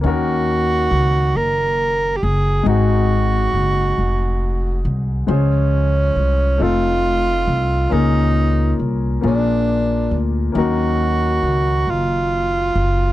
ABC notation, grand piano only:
X:1
M:6/8
L:1/8
Q:3/8=46
K:Ebdor
V:1 name="Grand piano"
[B,DEGB]6 | [A,CEGA]6 | [A,DFAc]3 [=A,CEF=A]3 | [B,DFAB]3 [B,D=DFAB]3 |
[G,B,DEB]6 |]
V:2 name="Grand piano" clef=bass
E,3 z3 | A,,3 z3 | F,3 z3 | B,,3 B,,3 |
E,3 z3 |]